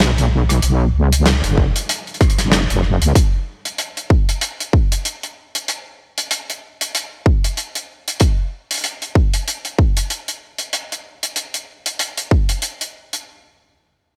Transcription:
Already playing: B1
0.00 snare, closed hi-hat
0.18 closed hi-hat
0.49 cross-stick, closed hi-hat
0.62 B1, closed hi-hat
0.94 C#2
1.12 closed hi-hat
1.26 snare, closed hi-hat
1.44 F#1, closed hi-hat
1.58 kick
1.76 closed hi-hat
1.89 closed hi-hat
2.07 closed hi-hat
2.14 closed hi-hat
2.21 kick, cross-stick, closed hi-hat
2.30 closed hi-hat
2.38 F#1, snare, closed hi-hat
2.52 snare, closed hi-hat
2.70 F#1, closed hi-hat
2.83 cross-stick
3.02 C#2, closed hi-hat
3.15 kick, closed hi-hat
3.65 closed hi-hat
3.78 closed hi-hat
3.97 closed hi-hat
4.10 kick
4.29 closed hi-hat
4.41 closed hi-hat
4.60 closed hi-hat
4.73 kick
4.92 closed hi-hat
5.05 closed hi-hat
5.23 closed hi-hat
5.55 closed hi-hat
5.68 closed hi-hat
6.18 closed hi-hat
6.31 closed hi-hat
6.50 closed hi-hat
6.81 closed hi-hat
6.95 closed hi-hat
7.26 kick
7.44 closed hi-hat
7.57 closed hi-hat
7.75 closed hi-hat
8.08 closed hi-hat
8.20 kick, closed hi-hat
8.71 closed hi-hat
8.74 closed hi-hat
8.77 closed hi-hat
8.81 closed hi-hat
8.84 closed hi-hat
9.02 closed hi-hat
9.15 kick
9.34 closed hi-hat
9.48 closed hi-hat
9.65 closed hi-hat
9.79 kick
9.97 closed hi-hat
10.10 closed hi-hat
10.28 closed hi-hat
10.58 closed hi-hat
10.73 closed hi-hat
10.92 closed hi-hat
11.23 closed hi-hat
11.36 closed hi-hat
11.54 closed hi-hat
11.86 closed hi-hat
11.99 closed hi-hat
12.17 closed hi-hat
12.31 kick
12.49 closed hi-hat
12.62 closed hi-hat
12.81 closed hi-hat
13.13 closed hi-hat

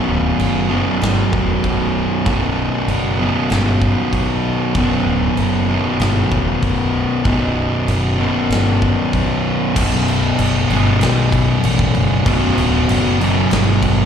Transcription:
Already playing: B1 F#2 B2
0.09 D1
0.39 F#1, crash
0.69 B1 F#2 B2
1.01 G1, snare, crash
1.33 E1, kick
1.64 B0, kick, crash
2.24 B0 B1 F#2 B2, kick, crash
2.87 F#1, crash
3.18 B1 F#2 B2
3.50 G1, snare, crash
3.82 kick
4.12 B1, kick, crash
4.75 B0 B1 F#2 B2, kick, crash
5.06 D1
5.36 F#1, crash
5.68 B1 F#2 B2
6.00 G1, snare, crash
6.31 E1, kick
6.62 B0, kick, crash
7.24 B0 B1 F#2 B2, kick, crash
7.88 F#1, crash
8.18 B1 F#2 B2
8.49 G1, snare, crash
8.82 kick
9.13 B1, kick, crash
9.75 B0 B1 F#2 B2, kick, crash
10.08 crash
10.39 F#1, crash
10.69 G1 B1 F#2 B2, crash
11.00 B1, snare, crash
11.32 kick, crash
11.64 A1, crash
11.79 kick
11.95 F#1, kick, crash
12.25 B0 B1 F#2 B2, kick, crash
12.57 D1, crash
12.89 F#1, crash
13.20 B1 F#2 B2, crash
13.51 G1, snare, crash
13.82 kick, crash

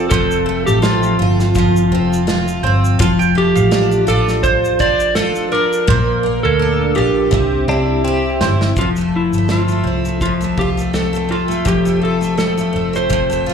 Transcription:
Already playing: F3 A3 C4 F4
0.10 F1 F2 A4 C5, kick, shaker
0.31 shaker
0.46 A3
0.66 A1 G4 A4, shaker
0.82 C4 F4, snare, shaker
1.03 shaker
1.19 G1 F4
1.40 snare, shaker
1.55 F3, kick, shaker
1.76 shaker
1.91 F1 C4
2.13 shaker
2.27 F4, snare, shaker
2.48 shaker
2.63 G1 C4 C5
2.85 shaker
2.99 F1 F3 F4, kick, shaker
3.19 G5, shaker
3.35 A3 G4
3.55 A1 F5, shaker
3.71 D4, snare, shaker
3.92 shaker
4.07 A1 F4 A4 D5, shaker
4.28 snare, shaker
4.43 C5, kick, shaker
4.65 shaker
4.79 F1 D4 C5 D5, kick, shaker
5.00 shaker
5.15 F4 A4, snare, shaker
5.35 shaker
5.52 D4 A#4 D5
5.73 shaker
5.87 A#1 A#2 C5, kick
6.23 A#3
6.43 D2 A#3 A4
6.59 D4
6.95 A#1 F4 G4
7.31 C2 C3, kick
7.68 C2 D4 E4
8.04 C4 G4
8.41 G1 E4 C5, snare
8.61 snare
8.77 F1 F2 F4, kick, shaker
8.96 A3, shaker
9.16 E4
9.33 G1 A3, shaker
9.49 C4 F4, snare, shaker
9.68 A3, shaker
9.84 C2 C4
10.05 A3, shaker
10.21 F2 F4, kick, shaker
10.41 A3, shaker
10.57 C2 F4 G4, kick
10.77 A3, shaker
10.93 C4 A4, snare, shaker
11.13 A3, shaker
11.29 C4 F4
11.48 A3, shaker
11.65 F1 F2 G4, kick, shaker
11.85 A3, shaker
12.02 F4 A4
12.21 A3, shaker
12.37 C4 A4, snare, shaker
12.57 A3, shaker
12.73 F1 C4
12.93 A3 C5, shaker
13.10 F1 F2, kick, shaker
13.30 A3, shaker
13.46 F4

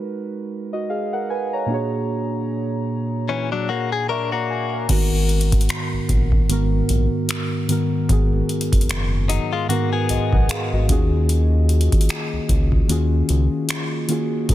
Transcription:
Already playing: G#3 D#4 F#4 A#4 B4
0.73 F#4 D#5
0.90 G#4 F5
1.13 A#4 F#5
1.30 B4 G#5
1.53 C#5 A#5
1.66 A#2 A#3 D4
1.71 F#4 G#4 C#5
3.29 E3 C#4
3.52 F#3 D4
3.69 A#3 F#4
3.92 G#4
4.09 D4 A#4 E5 C#6
4.32 A#3 F#4 D5 A#5
4.50 G#5
4.73 A#4 F#5
4.88 G#1 G#2 D#3 B3 F#4 A#4, kick, closed hi-hat, crash
5.29 closed hi-hat
5.41 closed hi-hat
5.52 kick, closed hi-hat
5.61 closed hi-hat
5.69 finger snap, closed hi-hat
5.93 A#1
6.09 A#1, kick, closed hi-hat
6.32 kick
6.48 G#1 G#2 D#3 B3 F#4 A#4, closed hi-hat
6.89 A#1, closed hi-hat
7.29 finger snap, closed hi-hat
7.68 G#2 D#3 B3 F#4, closed hi-hat
7.72 A#4
8.08 G#1 G#2 D#3 B3 F#4 G#4, kick, closed hi-hat
8.49 closed hi-hat
8.61 closed hi-hat
8.72 F#1, kick, closed hi-hat
8.81 closed hi-hat
8.89 finger snap, closed hi-hat
9.29 F#3 D#4, closed hi-hat
9.53 G#3 F4
9.68 G#2 D#3 A#3 B3 F#4, closed hi-hat
9.72 A#4
9.93 B3 G#4
10.09 B1 F#4 D#5, closed hi-hat
10.33 B1 A#4 F#5, kick
10.49 G#4 F5, finger snap, closed hi-hat
10.73 G#1 F#4 D#5
10.88 D#2 D#3 A#3 C#4 F4 F#4 G#4, kick, closed hi-hat
11.29 closed hi-hat
11.69 closed hi-hat
11.81 closed hi-hat
11.92 kick, closed hi-hat
12.01 closed hi-hat
12.09 finger snap, closed hi-hat
12.33 C#2
12.49 C#2, kick, closed hi-hat
12.72 kick
12.88 D#2 D#3 A#3 C#4 F4 F#4 G#4, closed hi-hat
13.29 C#2, closed hi-hat
13.69 finger snap, closed hi-hat
14.08 D#3 A#3 C#4 F4 F#4 G#4, closed hi-hat
14.48 A#1 A#2 F3 C#4 G#4, kick, closed hi-hat

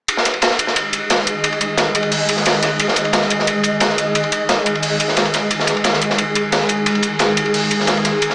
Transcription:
0.08 D#3 G#3 G#4 D#5, closed hi-hat, ride
0.17 snare
0.25 snare, closed hi-hat, ride
0.34 ride
0.42 snare, closed hi-hat, ride
0.51 snare
0.59 closed hi-hat, ride
0.67 snare
0.76 closed hi-hat, ride
0.93 closed hi-hat, ride
1.10 snare, closed hi-hat, ride
1.19 snare
1.27 closed hi-hat, ride
1.44 closed hi-hat, ride
1.52 ride
1.61 closed hi-hat, ride
1.77 snare, closed hi-hat, ride
1.95 closed hi-hat, ride
2.03 ride
2.12 closed hi-hat, open hi-hat
2.29 closed hi-hat, ride
2.37 snare
2.46 snare, closed hi-hat, ride
2.54 ride
2.63 snare, closed hi-hat, ride
2.80 closed hi-hat, ride
2.88 snare
2.96 snare, closed hi-hat, ride
3.05 ride
3.13 snare, closed hi-hat, ride
3.21 snare
3.30 closed hi-hat, ride
3.39 snare
3.47 closed hi-hat, ride
3.63 closed hi-hat, ride
3.80 snare, closed hi-hat, ride
3.89 snare
3.98 closed hi-hat, ride
4.15 closed hi-hat, ride
4.24 ride
4.32 closed hi-hat, ride
4.49 snare, closed hi-hat, ride
4.66 closed hi-hat, ride
4.75 ride
4.82 closed hi-hat, open hi-hat
5.00 closed hi-hat, ride
5.08 snare
5.17 snare, closed hi-hat, ride
5.25 ride
5.34 snare, closed hi-hat, ride
5.51 G#4, closed hi-hat, ride
5.59 snare
5.67 snare, closed hi-hat, ride
5.77 ride
5.84 snare, closed hi-hat, ride
5.93 snare
6.02 closed hi-hat, ride
6.10 snare
6.18 closed hi-hat, ride
6.35 closed hi-hat, ride
6.52 snare, closed hi-hat, ride
6.60 snare
6.69 closed hi-hat, ride
6.86 closed hi-hat, ride
6.95 ride
7.03 closed hi-hat, ride
7.19 snare, closed hi-hat, ride
7.37 closed hi-hat, ride
7.46 ride
7.54 closed hi-hat, open hi-hat
7.71 closed hi-hat, ride
7.80 snare
7.87 snare, closed hi-hat, ride
7.97 ride
8.04 snare, closed hi-hat, ride
8.22 closed hi-hat, ride
8.30 snare

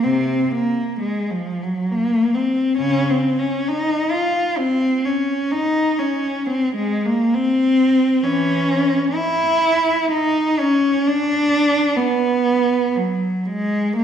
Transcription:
0.03 C3 C4
0.51 A#3
0.99 G#3
1.31 F3
1.62 F#3
1.92 A#3
2.35 C4
2.78 C#3 C#4
3.10 C4
3.40 C#4
3.68 D#4
4.11 F4
4.58 C4
5.05 C#4
5.51 D#4
5.98 C#4
6.46 C4
6.75 G#3
7.06 A#3
7.34 C4
8.23 E3 C#4
9.15 E4
10.11 D#4
10.60 C#4
11.07 D4
11.96 B3
12.96 F#3
13.46 G#3
13.96 A#3

